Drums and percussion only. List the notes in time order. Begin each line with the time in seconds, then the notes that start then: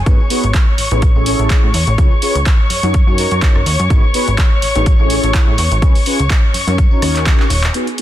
0.06 kick, closed hi-hat, tambourine
0.20 tambourine
0.30 open hi-hat, tambourine
0.44 closed hi-hat
0.54 kick, clap, closed hi-hat
0.78 open hi-hat, tambourine
0.92 tambourine
1.02 kick, closed hi-hat, tambourine
1.15 tambourine
1.26 open hi-hat, tambourine
1.39 closed hi-hat, tambourine
1.50 kick, clap, closed hi-hat
1.74 open hi-hat, tambourine
1.87 closed hi-hat
1.98 kick, closed hi-hat, tambourine
2.11 tambourine
2.22 open hi-hat, tambourine
2.35 closed hi-hat, tambourine
2.46 kick, clap, closed hi-hat
2.70 open hi-hat, tambourine
2.83 closed hi-hat, tambourine
2.94 kick, closed hi-hat, tambourine
3.08 tambourine
3.18 open hi-hat, tambourine
3.31 closed hi-hat
3.41 kick, clap, closed hi-hat, tambourine
3.56 cross-stick
3.66 open hi-hat, tambourine
3.80 closed hi-hat
3.90 kick, closed hi-hat, tambourine
4.03 tambourine
4.14 open hi-hat, tambourine
4.28 closed hi-hat
4.38 kick, clap, closed hi-hat
4.62 open hi-hat, tambourine
4.75 closed hi-hat
4.86 kick, closed hi-hat, tambourine
4.99 tambourine
5.10 open hi-hat, tambourine
5.23 closed hi-hat, tambourine
5.34 kick, clap, closed hi-hat
5.57 open hi-hat, tambourine
5.72 closed hi-hat
5.82 kick, closed hi-hat, tambourine
5.95 open hi-hat, tambourine
6.06 open hi-hat, tambourine
6.19 closed hi-hat, tambourine
6.30 kick, clap, closed hi-hat
6.43 tambourine
6.54 open hi-hat, tambourine
6.68 closed hi-hat, tambourine
6.78 kick, closed hi-hat, tambourine
6.91 tambourine
7.02 cross-stick, open hi-hat, tambourine
7.16 clap, closed hi-hat
7.26 kick, clap, closed hi-hat
7.39 clap, tambourine
7.50 open hi-hat, tambourine
7.64 clap, tambourine
7.74 closed hi-hat
7.87 closed hi-hat
7.98 closed hi-hat